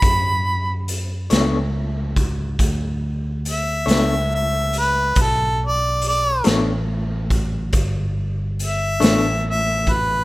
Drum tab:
HH |x-xx-xx-xx-x|x-xx-xx-xx-x|
SD |---o-----o--|---o-----o--|
BD |o----oo-----|o----oo----o|